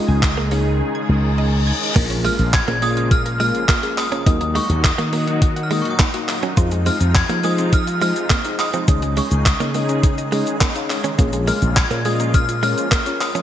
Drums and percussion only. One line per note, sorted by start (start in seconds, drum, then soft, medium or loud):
0.23 kick loud
0.23 clap loud
0.23 closed hi-hat medium
0.51 open hi-hat medium
1.96 kick loud
1.96 closed hi-hat medium
1.96 crash loud
2.10 closed hi-hat medium
2.25 open hi-hat medium
2.39 closed hi-hat medium
2.54 kick loud
2.54 clap loud
2.54 closed hi-hat medium
2.68 closed hi-hat soft
2.82 open hi-hat medium
2.97 closed hi-hat soft
3.11 kick loud
3.11 closed hi-hat medium
3.26 closed hi-hat medium
3.40 open hi-hat medium
3.55 closed hi-hat medium
3.69 kick loud
3.69 clap loud
3.69 closed hi-hat medium
3.83 closed hi-hat medium
3.98 clap medium
3.98 open hi-hat medium
4.12 closed hi-hat medium
4.26 kick loud
4.26 closed hi-hat medium
4.41 closed hi-hat medium
4.55 open hi-hat medium
4.70 closed hi-hat medium
4.84 kick loud
4.84 clap loud
4.84 closed hi-hat medium
4.99 closed hi-hat soft
5.13 open hi-hat medium
5.27 closed hi-hat soft
5.42 kick loud
5.42 closed hi-hat medium
5.56 closed hi-hat medium
5.71 open hi-hat medium
5.85 closed hi-hat medium
5.99 kick loud
5.99 clap loud
5.99 closed hi-hat medium
6.14 closed hi-hat medium
6.28 clap medium
6.28 open hi-hat medium
6.43 closed hi-hat medium
6.57 kick loud
6.57 closed hi-hat medium
6.57 shaker medium
6.71 closed hi-hat medium
6.71 shaker medium
6.86 open hi-hat medium
6.86 shaker medium
7.00 closed hi-hat medium
7.00 shaker medium
7.15 kick loud
7.15 clap loud
7.15 closed hi-hat medium
7.15 shaker medium
7.29 closed hi-hat soft
7.29 shaker soft
7.43 open hi-hat medium
7.43 shaker soft
7.58 closed hi-hat medium
7.58 shaker medium
7.73 kick loud
7.73 closed hi-hat medium
7.73 shaker medium
7.87 closed hi-hat medium
7.87 shaker soft
8.01 open hi-hat medium
8.01 shaker soft
8.16 closed hi-hat soft
8.16 shaker medium
8.30 kick loud
8.30 clap loud
8.30 closed hi-hat medium
8.30 shaker medium
8.45 closed hi-hat medium
8.45 shaker medium
8.59 clap medium
8.59 open hi-hat medium
8.59 shaker soft
8.73 closed hi-hat soft
8.73 shaker medium
8.88 kick loud
8.88 closed hi-hat medium
8.88 shaker medium
9.02 closed hi-hat medium
9.02 shaker medium
9.17 open hi-hat medium
9.17 shaker medium
9.31 closed hi-hat medium
9.31 shaker medium
9.46 kick loud
9.46 clap loud
9.46 closed hi-hat medium
9.46 shaker medium
9.60 closed hi-hat soft
9.60 shaker soft
9.74 open hi-hat medium
9.74 shaker soft
9.89 closed hi-hat soft
9.89 shaker medium
10.03 kick loud
10.03 closed hi-hat medium
10.03 shaker medium
10.18 closed hi-hat soft
10.18 shaker soft
10.32 open hi-hat medium
10.32 shaker soft
10.47 closed hi-hat soft
10.47 shaker medium
10.61 kick loud
10.61 clap loud
10.61 closed hi-hat medium
10.61 shaker medium
10.75 closed hi-hat medium
10.75 shaker medium
10.90 clap medium
10.90 open hi-hat medium
10.90 shaker soft
11.04 closed hi-hat soft
11.04 shaker medium
11.19 kick loud
11.19 closed hi-hat medium
11.19 shaker medium
11.33 closed hi-hat medium
11.33 shaker medium
11.48 open hi-hat medium
11.48 shaker medium
11.62 closed hi-hat medium
11.62 shaker medium
11.77 kick loud
11.77 clap loud
11.77 closed hi-hat medium
11.77 shaker medium
11.91 closed hi-hat soft
11.91 shaker soft
12.05 open hi-hat medium
12.05 shaker soft
12.20 closed hi-hat medium
12.20 shaker medium
12.34 kick loud
12.34 closed hi-hat medium
12.34 shaker medium
12.49 closed hi-hat soft
12.49 shaker medium
12.63 open hi-hat medium
12.63 shaker soft
12.78 closed hi-hat soft
12.78 shaker medium
12.92 kick loud
12.92 clap loud
12.92 closed hi-hat medium
12.92 shaker medium
13.06 closed hi-hat medium
13.06 shaker medium
13.21 clap medium
13.21 open hi-hat medium
13.21 shaker medium
13.35 closed hi-hat medium
13.35 shaker medium